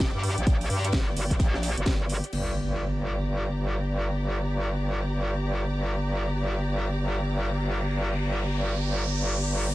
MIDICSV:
0, 0, Header, 1, 6, 480
1, 0, Start_track
1, 0, Key_signature, -2, "minor"
1, 0, Tempo, 465116
1, 483, Time_signature, 4, 2, 24, 8
1, 10058, End_track
2, 0, Start_track
2, 0, Title_t, "String section"
2, 0, Program_c, 0, 48
2, 0, Note_on_c, 0, 67, 83
2, 0, Note_on_c, 0, 74, 87
2, 0, Note_on_c, 0, 79, 78
2, 2388, Note_off_c, 0, 67, 0
2, 2400, Note_on_c, 0, 67, 78
2, 2403, Note_off_c, 0, 74, 0
2, 2432, Note_off_c, 0, 79, 0
2, 2568, Note_on_c, 0, 74, 67
2, 2955, Note_on_c, 0, 82, 71
2, 10058, Note_off_c, 0, 67, 0
2, 10058, Note_off_c, 0, 74, 0
2, 10058, Note_off_c, 0, 82, 0
2, 10058, End_track
3, 0, Start_track
3, 0, Title_t, "Wobble bass"
3, 0, Program_c, 1, 39
3, 0, Note_on_c, 1, 29, 99
3, 126, Note_off_c, 1, 29, 0
3, 150, Note_on_c, 1, 43, 98
3, 367, Note_off_c, 1, 43, 0
3, 391, Note_on_c, 1, 34, 99
3, 708, Note_off_c, 1, 34, 0
3, 722, Note_on_c, 1, 43, 97
3, 948, Note_off_c, 1, 43, 0
3, 962, Note_on_c, 1, 31, 100
3, 1188, Note_off_c, 1, 31, 0
3, 1202, Note_on_c, 1, 31, 95
3, 1428, Note_off_c, 1, 31, 0
3, 1442, Note_on_c, 1, 34, 99
3, 1807, Note_off_c, 1, 34, 0
3, 1830, Note_on_c, 1, 31, 101
3, 1907, Note_off_c, 1, 31, 0
3, 1922, Note_on_c, 1, 31, 99
3, 2287, Note_off_c, 1, 31, 0
3, 2401, Note_on_c, 1, 31, 88
3, 10058, Note_off_c, 1, 31, 0
3, 10058, End_track
4, 0, Start_track
4, 0, Title_t, "Impact"
4, 0, Program_c, 2, 103
4, 2403, Note_on_c, 2, 60, 71
4, 4323, Note_off_c, 2, 60, 0
4, 10058, End_track
5, 0, Start_track
5, 0, Title_t, "Riser"
5, 0, Program_c, 3, 103
5, 6242, Note_on_c, 3, 60, 75
5, 10058, Note_off_c, 3, 60, 0
5, 10058, End_track
6, 0, Start_track
6, 0, Title_t, "Drums"
6, 0, Note_on_c, 9, 38, 116
6, 2, Note_on_c, 9, 36, 110
6, 2, Note_on_c, 9, 42, 54
6, 2, Note_on_c, 9, 46, 88
6, 101, Note_off_c, 9, 38, 0
6, 105, Note_off_c, 9, 42, 0
6, 105, Note_off_c, 9, 46, 0
6, 106, Note_off_c, 9, 36, 0
6, 241, Note_on_c, 9, 42, 78
6, 242, Note_on_c, 9, 46, 102
6, 344, Note_off_c, 9, 42, 0
6, 345, Note_off_c, 9, 46, 0
6, 390, Note_on_c, 9, 42, 69
6, 482, Note_off_c, 9, 42, 0
6, 482, Note_on_c, 9, 36, 117
6, 482, Note_on_c, 9, 42, 54
6, 483, Note_off_c, 9, 42, 0
6, 483, Note_on_c, 9, 42, 61
6, 484, Note_on_c, 9, 38, 49
6, 586, Note_off_c, 9, 36, 0
6, 586, Note_off_c, 9, 42, 0
6, 587, Note_off_c, 9, 38, 0
6, 630, Note_on_c, 9, 42, 72
6, 631, Note_on_c, 9, 46, 58
6, 722, Note_off_c, 9, 46, 0
6, 722, Note_on_c, 9, 46, 107
6, 724, Note_on_c, 9, 38, 37
6, 733, Note_off_c, 9, 42, 0
6, 825, Note_off_c, 9, 46, 0
6, 827, Note_off_c, 9, 38, 0
6, 870, Note_on_c, 9, 38, 48
6, 872, Note_on_c, 9, 42, 64
6, 954, Note_off_c, 9, 42, 0
6, 954, Note_on_c, 9, 42, 87
6, 959, Note_off_c, 9, 38, 0
6, 959, Note_on_c, 9, 38, 120
6, 962, Note_on_c, 9, 36, 117
6, 963, Note_off_c, 9, 42, 0
6, 963, Note_on_c, 9, 42, 57
6, 970, Note_off_c, 9, 38, 0
6, 970, Note_on_c, 9, 38, 112
6, 1066, Note_off_c, 9, 36, 0
6, 1066, Note_off_c, 9, 42, 0
6, 1073, Note_off_c, 9, 38, 0
6, 1124, Note_on_c, 9, 38, 36
6, 1202, Note_on_c, 9, 42, 67
6, 1203, Note_on_c, 9, 46, 105
6, 1227, Note_off_c, 9, 38, 0
6, 1305, Note_off_c, 9, 42, 0
6, 1306, Note_off_c, 9, 46, 0
6, 1351, Note_on_c, 9, 36, 60
6, 1352, Note_on_c, 9, 42, 72
6, 1354, Note_on_c, 9, 38, 45
6, 1436, Note_off_c, 9, 38, 0
6, 1436, Note_on_c, 9, 38, 99
6, 1442, Note_off_c, 9, 36, 0
6, 1442, Note_off_c, 9, 42, 0
6, 1442, Note_on_c, 9, 36, 119
6, 1442, Note_on_c, 9, 42, 86
6, 1444, Note_off_c, 9, 42, 0
6, 1444, Note_on_c, 9, 42, 57
6, 1540, Note_off_c, 9, 38, 0
6, 1546, Note_off_c, 9, 36, 0
6, 1547, Note_off_c, 9, 42, 0
6, 1588, Note_on_c, 9, 38, 38
6, 1672, Note_off_c, 9, 38, 0
6, 1672, Note_on_c, 9, 38, 95
6, 1682, Note_on_c, 9, 46, 102
6, 1684, Note_on_c, 9, 42, 87
6, 1775, Note_off_c, 9, 38, 0
6, 1785, Note_off_c, 9, 46, 0
6, 1787, Note_off_c, 9, 42, 0
6, 1832, Note_on_c, 9, 42, 70
6, 1916, Note_on_c, 9, 38, 127
6, 1920, Note_off_c, 9, 38, 0
6, 1920, Note_on_c, 9, 38, 121
6, 1922, Note_on_c, 9, 36, 116
6, 1923, Note_off_c, 9, 42, 0
6, 1923, Note_on_c, 9, 42, 56
6, 2023, Note_off_c, 9, 38, 0
6, 2026, Note_off_c, 9, 36, 0
6, 2027, Note_off_c, 9, 42, 0
6, 2158, Note_on_c, 9, 42, 65
6, 2163, Note_on_c, 9, 46, 103
6, 2262, Note_off_c, 9, 42, 0
6, 2266, Note_off_c, 9, 46, 0
6, 2311, Note_on_c, 9, 42, 68
6, 2402, Note_on_c, 9, 49, 83
6, 2414, Note_off_c, 9, 42, 0
6, 2505, Note_off_c, 9, 49, 0
6, 10058, End_track
0, 0, End_of_file